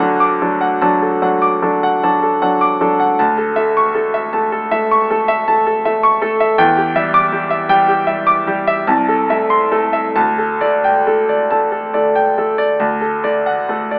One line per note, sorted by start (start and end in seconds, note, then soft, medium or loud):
0.00 3.19 D2 medium
0.00 0.37 F#3 soft
0.00 0.37 D4 soft
0.00 0.12 A4 soft
0.00 0.32 F#5 soft
0.00 0.82 A5 soft
0.20 0.53 D6 soft
0.42 0.78 F#3 soft
0.42 0.78 D4 soft
0.42 0.74 A4 soft
0.61 0.94 F#5 soft
0.82 1.18 F#3 soft
0.82 1.18 D4 soft
0.82 1.14 A5 soft
1.02 1.34 A4 soft
1.22 1.58 F#3 soft
1.22 1.58 D4 soft
1.22 1.54 F#5 soft
1.42 1.74 D6 soft
1.62 1.98 F#3 soft
1.62 1.98 D4 soft
1.62 1.94 A4 soft
1.83 2.15 F#5 soft
2.04 2.38 F#3 soft
2.04 2.39 D4 soft
2.04 2.34 A5 soft
2.22 2.54 A4 soft
2.42 2.77 F#3 soft
2.42 2.77 D4 soft
2.42 2.73 F#5 soft
2.61 2.92 D6 soft
2.81 3.15 F#3 soft
2.81 3.15 D4 soft
2.81 3.11 A4 soft
3.00 3.19 F#5 soft
3.19 3.56 D2 soft
3.19 3.50 A5 medium
3.38 3.69 A4 soft
3.56 3.91 A3 soft
3.56 3.87 E5 soft
3.77 4.07 C#6 soft
3.94 4.29 A3 soft
3.94 4.26 A4 soft
4.14 4.45 E5 soft
4.33 4.68 A3 soft
4.33 4.64 A5 soft
4.52 4.83 A4 soft
4.71 5.07 A3 soft
4.71 5.03 E5 medium
4.91 5.23 C#6 soft
5.10 5.45 A3 soft
5.10 5.42 A4 soft
5.28 5.60 E5 medium
5.48 5.82 A3 soft
5.48 5.78 A5 medium
5.67 5.97 A4 soft
5.85 6.18 A3 soft
5.85 6.15 E5 medium
6.03 6.33 C#6 medium
6.22 6.54 A3 soft
6.22 6.51 A4 medium
6.40 6.59 E5 soft
6.58 6.94 E2 medium
6.58 6.88 G5 medium
6.77 7.06 G4 soft
6.96 7.29 G3 soft
6.96 7.25 E5 medium
7.14 7.43 D6 medium
7.32 7.65 G3 soft
7.32 7.62 G4 soft
7.51 7.80 E5 soft
7.69 8.03 G3 medium
7.69 7.99 G5 medium
7.88 8.19 G4 medium
8.07 8.43 G3 soft
8.07 8.38 E5 soft
8.27 8.59 D6 medium
8.47 8.84 G3 soft
8.47 8.80 G4 medium
8.67 8.88 E5 medium
8.87 9.28 C2 medium
8.87 9.21 A5 medium
9.08 9.42 A4 soft
9.30 9.68 A3 soft
9.30 9.64 E5 soft
9.50 9.85 C6 soft
9.72 10.12 A3 soft
9.72 10.07 A4 medium
9.93 10.16 E5 soft
10.16 10.60 D2 medium
10.16 10.52 A5 medium
10.38 10.75 A4 soft
10.61 11.02 A3 soft
10.61 10.97 D5 soft
10.84 11.20 G5 soft
11.07 11.47 A3 soft
11.07 11.42 A4 soft
11.29 11.64 D5 soft
11.51 11.91 A3 soft
11.51 11.86 A5 soft
11.72 12.07 A4 soft
11.94 12.33 A3 soft
11.94 12.28 D5 soft
12.15 12.50 G5 soft
12.38 12.76 A3 soft
12.38 12.71 A4 soft
12.58 12.79 D5 soft
12.80 13.22 D2 soft
12.80 13.14 A5 soft
13.01 13.37 A4 soft
13.24 13.65 A3 soft
13.24 13.60 D5 soft
13.46 13.82 F#5 soft
13.69 13.99 A3 soft
13.69 13.99 A4 soft
13.91 13.99 D5 soft